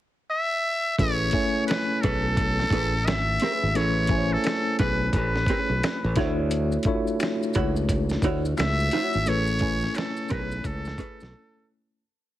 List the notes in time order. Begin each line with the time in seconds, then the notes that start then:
0.31 E5
0.99 A1 A3 C#4 E4 G#4 B4 C#5, kick, closed hi-hat
1.31 A3 C#4 E4 G#5, kick, closed hi-hat
1.35 C#5
1.67 B4, muted hollow-body jazz guitar stroke, snare, closed hi-hat
2.01 B1 C#4 G#4 A4 B4, kick, closed hi-hat
2.37 muted hollow-body jazz guitar stroke, kick, closed hi-hat
2.60 snare
2.70 A1 C#4 G#4 B4, kick, closed hi-hat
3.06 G#1 E5, muted hollow-body jazz guitar stroke, snare, closed hi-hat
3.40 C#4 G#4, snare, closed hi-hat
3.44 B4
3.63 G#1
3.75 A1 A3 C#4 E4 G#4 B4 C#5, closed hi-hat
4.07 A3 C#4 E4 G#5, kick, closed hi-hat
4.12 C5
4.18 C#5
4.33 A4
4.44 muted hollow-body jazz guitar stroke, snare, closed hi-hat
4.79 B1 C#4 G#4 B4, kick, closed hi-hat
5.13 A1 B4, muted hollow-body jazz guitar stroke, kick, closed hi-hat
5.36 snare
5.46 C#4 G#4, kick, closed hi-hat
5.51 B4
5.69 B1
5.83 muted hollow-body jazz guitar stroke, snare, closed hi-hat
6.04 A1
6.16 D2 A3 D4 E4 F#4 C5 C#5, kick, snare, closed hi-hat
6.26 C#5
6.51 closed hi-hat, maracas
6.72 maracas
6.83 A3 D4, kick, closed hi-hat
6.87 E4 F4 C#5
6.94 F#4
7.07 maracas
7.20 finger snap, muted hollow-body jazz guitar stroke, snare, closed hi-hat, maracas
7.43 maracas
7.53 C#2 E4 F#4 C#5, kick, closed hi-hat, maracas
7.76 maracas
7.89 muted hollow-body jazz guitar stroke, kick, closed hi-hat, maracas
8.09 snare, maracas
8.22 D2 E4 F#4 C#5, kick, closed hi-hat, maracas
8.45 maracas
8.58 C#2 E5, finger snap, muted hollow-body jazz guitar stroke, snare, closed hi-hat, maracas
8.80 maracas
8.91 E4 F#4 C#5, snare, closed hi-hat, maracas
9.13 G#1, maracas
9.26 A1 A3 C#4 E4 G#4 B4 C#5, closed hi-hat, maracas
9.47 maracas
9.59 A3 C#4 E4 C#5 G#5, kick, closed hi-hat
9.81 snare, maracas
9.95 A4, finger snap, muted hollow-body jazz guitar stroke, snare, closed hi-hat, maracas
10.17 maracas
10.28 B1 C#4 G#4 B4, kick, closed hi-hat, maracas
10.52 maracas
10.64 C#2 A4, muted hollow-body jazz guitar stroke, kick, closed hi-hat, maracas
10.85 snare, maracas
10.98 C#4 G#4 B4, kick, closed hi-hat, maracas
11.21 B1, snare, maracas